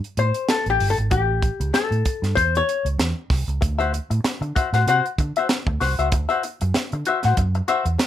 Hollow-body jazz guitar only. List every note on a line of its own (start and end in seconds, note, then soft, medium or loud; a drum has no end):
0.19 0.51 C5 medium
0.50 0.69 A4 medium
0.70 0.90 G4 medium
0.90 0.96 A4 medium
1.12 1.70 G4 medium
1.74 2.39 A4 medium
2.35 2.56 C5 loud
2.57 2.86 C#5 loud
3.61 muted hollow-body jazz guitar stroke soft
3.78 3.91 F#4 medium
3.78 3.92 C5 medium
3.78 3.91 E5 medium
3.92 muted hollow-body jazz guitar stroke soft
4.10 muted hollow-body jazz guitar stroke soft
4.24 muted hollow-body jazz guitar stroke soft
4.42 muted hollow-body jazz guitar stroke soft
4.55 4.68 F#4 medium
4.55 4.68 C5 medium
4.55 4.68 E5 medium
4.74 4.84 F#4 medium
4.74 4.83 C5 medium
4.74 4.83 F#5 medium
4.88 5.03 F#4 medium
4.88 5.04 C5 loud
4.88 5.04 F#5 medium
5.20 muted hollow-body jazz guitar stroke soft
5.37 5.47 F#4 medium
5.37 5.46 C5 medium
5.37 5.46 E5 medium
5.50 muted hollow-body jazz guitar stroke soft
5.68 muted hollow-body jazz guitar stroke soft
5.80 5.93 F#4 medium
5.80 5.93 C5 medium
5.80 5.94 F#5 medium
5.99 6.09 F#4 medium
5.99 6.08 C5 medium
5.99 6.08 E5 medium
6.13 muted hollow-body jazz guitar stroke soft
6.29 6.42 F#4 medium
6.29 6.42 C5 medium
6.29 6.42 E5 medium
6.44 muted hollow-body jazz guitar stroke soft
6.62 muted hollow-body jazz guitar stroke soft
6.75 muted hollow-body jazz guitar stroke soft
6.93 muted hollow-body jazz guitar stroke soft
7.07 7.18 F#4 medium
7.07 7.19 C5 medium
7.07 7.19 E5 medium
7.25 7.34 F#4 soft
7.25 7.34 C5 medium
7.25 7.34 F#5 medium
7.38 muted hollow-body jazz guitar stroke soft
7.55 muted hollow-body jazz guitar stroke medium
7.68 7.84 F#4 medium
7.68 7.84 C5 medium
7.68 7.84 E5 medium
7.85 muted hollow-body jazz guitar stroke soft
7.98 muted hollow-body jazz guitar stroke soft